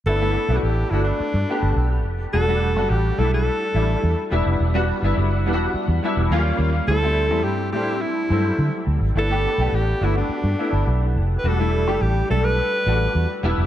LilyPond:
<<
  \new Staff \with { instrumentName = "Alto saxophone" } { \time 4/4 \key g \major \tempo 4 = 105 a'8.~ a'32 fis'32 g'8 e'16 d'4.~ d'16 r8 | a'4 g'8 a'16 a'4.~ a'16 r8 | r1 | a'4 g'8 g'8 e'4. r8 |
a'4 g'8 e'16 d'4.~ d'16 r16. b'32 | a'4 g'8 a'16 b'4.~ b'16 r8 | }
  \new Staff \with { instrumentName = "Grand piano" } { \time 4/4 \key g \major <a b d' e'>16 <a b d' e'>8 <a b d' e'>8 r16 <a b d' fis'>8. r16 <a b d' g'>4~ <a b d' g'>16 r16 | <g a d' fis'>16 <g a d' fis'>8 <g a d' fis'>8 r16 <g a d' e'>8. r16 <g a d' e'>4 <g b d' e'>8 | r16 <g b d' fis'>8 <g b d' e'>8 r16 <g b d' e' fis'>8. r16 <g b d' e'>8 <fis g bes des' f'>8. r16 | <g a c' e'>16 <g a c' e'>8 <g a c' e'>8 r16 <g a c' d' e'>8. r16 <fis g a c' e'>4~ <fis g a c' e'>16 r16 |
<a b d' e'>16 <a b d' g'>8 <a b d' g'>8 r16 <a b d' fis'>8. r16 <a b d' e'>4~ <a b d' e'>16 r16 | <g a d' fis'>16 <g a d' e'>8 <g a d' g'>8 r16 <g a d' a'>8. r16 <g a d' fis'>4 <g b d' e'>8 | }
  \new Staff \with { instrumentName = "Fingered electric bass" } { \clef bass \time 4/4 \key g \major g,,8. b,,16 a,,8 g,,8 r16 g,16 r16 g,,16 b,,8 f,,8 | e,,8. fis,,16 a,,8 b,,8. r16 a,,8 e,16 r16 e,,16 f,,16 | e,,8. g,,16 fis,,8 e,,8 r16 e,16 r16 e,,16 ees,8 ees,8 | d,8. e,16 g,8 a,8. r16 g,8 d16 r16 d,16 aes,,16 |
g,,8. b,,16 a,,8 g,,8 r16 g,16 r16 g,,16 b,,8 f,,8 | e,,8. fis,,16 a,,8 b,,8. r16 a,,8 e,16 r16 e,,16 f,,16 | }
>>